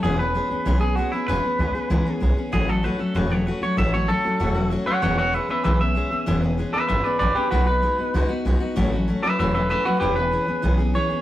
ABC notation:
X:1
M:4/4
L:1/8
Q:1/4=192
K:E
V:1 name="Clean electric guitar"
G B4 G F E | B6 z2 | G A B A B c B c | e c A4 z [cf] |
[cf] [cf] [Be] [Be] [Be] e3- | e z2 [Be] [Be] [B=d] [Bd] [=GB] | [FB] B4 z3 | z3 [Be] [Be] [Be] [Be] [FB] |
[=GB] B4 z c2 |]
V:2 name="Steel-string acoustic guitar"
[E,G,B,CG] [B,CG] [G,B,CG] [B,CG] [E,G,B,CG] [B,CG] [G,B,CG] [B,CG] | [E,G,B,CG] [B,CG] [G,B,CG] [B,CG] [E,G,B,CG] [B,CG] [G,B,CG] [B,CG] | [A,,E,F,A,CF] [F,A,CF] [F,A,CF] [F,A,CF] [A,,E,F,A,CF] [F,A,CF] [F,A,CF] [F,A,CF] | [A,,E,F,A,CF] [F,A,CF] [F,A,CF] [F,A,CF] [A,,E,F,A,CF] [F,A,CF] [F,A,CF] [F,A,CF] |
[E,G,B,CG] [B,CG] [G,B,CG] [B,CG] [E,G,B,CG] [B,CG] [G,B,CG] [B,CG] | [E,G,B,CG] [B,CG] [G,B,CG] [B,CG] [E,G,B,CG] [B,CG] [G,B,CG] [B,CG] | [B,,G,B,DF] [B,DF] [G,B,DF] [B,DF] [B,,G,B,DF] [B,DF] [G,B,DF] [B,DF] | [A,,E,F,A,CF] [F,A,CF] [F,A,CF] [F,A,CF] [A,,E,F,A,CF] [F,A,CF] [F,A,CF] [F,A,CF] |
[E,B,CG] [B,CG] [E,B,CG] [B,CG] [E,B,CG] [B,CG] [E,B,CG] [B,CG] |]
V:3 name="Upright bass" clef=bass
E,,,3 z B,,,3 z | E,,, z =D,, z C,, z B,,, z | A,,,3 z E,,,3 z | A,,,3 z E,,,3 z |
E,,,3 z B,,,3 z | E,,,3 z G,,, z A,,, z | B,,,3 z C,, z B,,, z | A,,,3 z E,,,3 z |
E,,,3 z B,,,3 z |]